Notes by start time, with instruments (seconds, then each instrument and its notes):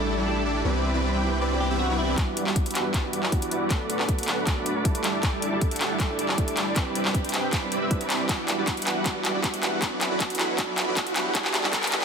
Already playing: 808-style bass A1, supersaw synth G3 D4 E4 A4 D5, string section A4 E5 G5 D6
0.00 clean electric guitar E4
0.17 supersaw synth G3 D4 E4 A4 D5
0.26 felt piano G3 A3 D4 E4 A4, clean electric guitar D4
0.46 supersaw synth G3 D4 E4 A4 D5
0.64 808-style bass C2, felt piano E3 B3 C4 D4 G4, supersaw synth G3 C4 E4 B4 D5, string section C5 B5 D6
0.93 felt piano E3 B3 C4 D4 G4, supersaw synth G3 C4 E4 B4 D5
1.13 supersaw synth G3 C4 E4 B4 G5
1.21 felt piano E3 B3 C4 D4 G4
1.41 supersaw synth G3 C4 E4 B4 D5
1.50 felt piano E3 B3 C4 D4 G4
1.60 supersaw synth G3 C4 E4 B4 D5, clean electric guitar G4
1.69 felt piano E3 B3 C4 D4 G4, supersaw synth G3 C4 E4 B4 E5
1.79 clean electric guitar F#4
1.89 supersaw synth G3 C4 E4 B4 D5
1.98 felt piano E3 B3 C4 D4 G4, clean electric guitar E4
2.17 felt piano E3 G3 B3 D4 F#4, supersaw synth G3 E4 F#4 B4 D5, string section G3 E5 F#5 D6, kick, clap, closed hi-hat
2.37 closed hi-hat
2.46 808-style bass E1, felt piano E3 G3 B3 D4 F#4, supersaw synth G3 E4 F#4 B4 D5, clap
2.56 kick, closed hi-hat
2.66 808-style bass E1, supersaw synth G3 E4 F#4 B4 F#5, closed hi-hat
2.71 felt piano E3 G3, closed hi-hat
2.75 felt piano B3 D4 F#4, clap, closed hi-hat
2.94 supersaw synth G3 E4 F#4 B4 D5, kick, clap, closed hi-hat
3.03 felt piano E3 G3 B3 D4 F#4
3.13 closed hi-hat
3.23 808-style bass E1, supersaw synth G3 E4 F#4 B4 D5, clap
3.31 felt piano E3 G3 B3 D4 F#4, kick, closed hi-hat
3.42 closed hi-hat
3.51 808-style bass E2, supersaw synth G3 E4 F#4 B4 D5, closed hi-hat
3.69 808-style bass B1, felt piano F#3 A3 B3 D4 A4, supersaw synth A3 D4 F#4 B4 D5, string section A4 B5, kick, clap, closed hi-hat
3.90 closed hi-hat
3.98 808-style bass B1, felt piano F#3 A3 B3 D4 A4, supersaw synth A3 D4 F#4 B4 D5, clap
4.09 kick, closed hi-hat
4.18 808-style bass B1, supersaw synth A3 D4 F#4 B4 F#5, closed hi-hat
4.23 felt piano F#3, closed hi-hat
4.27 felt piano A3 B3 D4 A4, clap, closed hi-hat
4.47 supersaw synth A3 D4 F#4 B4 D5, kick, clap, closed hi-hat
4.56 felt piano F#3 A3 B3 D4 A4
4.66 closed hi-hat
4.76 808-style bass B1, supersaw synth A3 D4 F#4 B4 D5
4.84 felt piano G3 A3 D4 E4 A4, kick, closed hi-hat
4.95 closed hi-hat
5.04 808-style bass A1, supersaw synth G3 D4 E4 A4 D5, string section G4 E5 A5, clap, closed hi-hat
5.22 felt piano G3 A3 E4, supersaw synth G3 D4 E4 A4 D5, kick, clap, closed hi-hat
5.42 closed hi-hat
5.51 808-style bass A1, felt piano G3 A3 D4 E4 A4, supersaw synth G3 D4 E4 A4 D5
5.61 kick, closed hi-hat
5.71 808-style bass A1, supersaw synth G3 D4 E4 A4 F#5, closed hi-hat
5.76 felt piano G3 A3, closed hi-hat
5.80 felt piano D4 E4 A4, clap, closed hi-hat
6.00 supersaw synth G3 D4 E4 A4 D5, kick, clap, closed hi-hat
6.08 felt piano G3 A3 D4 E4 A4
6.19 closed hi-hat
6.29 808-style bass A2, supersaw synth G3 D4 E4 A4 D5, clap
6.37 felt piano G3 A3 D4 E4 A4, kick, closed hi-hat
6.48 closed hi-hat
6.57 808-style bass A2, supersaw synth G3 D4 E4 A4 D5, clap, closed hi-hat
6.75 808-style bass C2, felt piano G3 C4 E4 B4, supersaw synth G3 C4 E4 B4 D5, string section C4 E5 B5, kick, clap, closed hi-hat
6.95 closed hi-hat
7.04 808-style bass C2, felt piano G3 C4 D4 E4 B4, supersaw synth G3 C4 E4 B4 D5, clap
7.14 kick, closed hi-hat
7.24 808-style bass C2, supersaw synth G3 C4 E4 B4 G5, closed hi-hat
7.29 felt piano G3 C4, closed hi-hat
7.33 felt piano D4 E4 B4, clap, closed hi-hat
7.53 supersaw synth G3 C4 E4 B4 D5, kick, clap, closed hi-hat
7.61 felt piano G3 C4 D4 E4 B4
7.72 808-style bass C2, supersaw synth G3 C4 E4 B4 D5, closed hi-hat
7.81 808-style bass C2, supersaw synth G3 C4 E4 B4 E5
7.90 felt piano G3 C4 D4 E4 B4, kick, closed hi-hat
8.01 808-style bass C2, supersaw synth G3 C4 E4 B4 D5, closed hi-hat
8.10 clap, closed hi-hat
8.28 felt piano E3 G3 B3 F#4, supersaw synth G3 E4 F#4 B4 D5, string section G4 F#5, kick, clap, closed hi-hat, riser
8.48 clap, closed hi-hat
8.57 felt piano E3 G3 B3 D4 F#4, supersaw synth G3 E4 F#4 B4 D5
8.67 kick, clap, closed hi-hat
8.77 supersaw synth G3 E4 F#4 B4 F#5, closed hi-hat
8.82 felt piano E3 G3, closed hi-hat
8.86 felt piano B3 D4 F#4, clap, closed hi-hat
9.04 felt piano E3 G3 B3 D4 F#4, supersaw synth G3 E4 F#4 B4 D5, kick, clap, closed hi-hat
9.25 clap, closed hi-hat
9.33 felt piano E3 G3 B3 D4 F#4, supersaw synth G3 E4 F#4 B4 D5
9.44 kick, clap, closed hi-hat
9.54 808-style bass E2, supersaw synth G3 E4 F#4 B4 F#5, closed hi-hat
9.62 felt piano E3 G3 B3 D4 F#4, clap, closed hi-hat
9.81 felt piano E3 F#3 B3 D4 F#4, supersaw synth F#3 E4 F#4 B4 D5, string section A4 B5, kick, clap, closed hi-hat
10.01 clap, closed hi-hat
10.10 808-style bass B1, felt piano E3 F#3 B3 D4 F#4, supersaw synth F#3 E4 F#4 B4 D5
10.20 kick, clap, closed hi-hat
10.30 808-style bass B1, supersaw synth F#3 E4 F#4 B4 F#5, closed hi-hat
10.35 felt piano E3 F#3, closed hi-hat
10.39 felt piano B3 D4 F#4, clap, closed hi-hat
10.57 felt piano E3 F#3 B3 D4, supersaw synth F#3 E4 F#4 B4 D5, kick, clap, closed hi-hat
10.78 clap, closed hi-hat
10.86 808-style bass B1, felt piano E3 F#3 B3 D4 F#4, supersaw synth F#3 E4 F#4 B4 D5
10.97 kick, clap, closed hi-hat
11.06 808-style bass B1, supersaw synth F#3 E4 F#4 B4 F#5, closed hi-hat
11.15 felt piano E3 G3 B3 D4 F#4, string section G4 E5 A5, clap, closed hi-hat
11.34 felt piano E3 G3 D4 F#4, supersaw synth G3 E4 F#4 B4 D5, kick, clap, closed hi-hat
11.45 clap
11.54 clap, closed hi-hat
11.63 felt piano E3 G3 B3 D4 F#4, supersaw synth G3 E4 F#4 B4 D5, clap
11.72 felt piano E3 G3 B3 F#4, supersaw synth G3 E4 F#4 B4 D5, kick, clap, closed hi-hat
11.83 clap, closed hi-hat
11.87 closed hi-hat
11.92 clap, closed hi-hat
12.01 felt piano E3 G3 B3, clap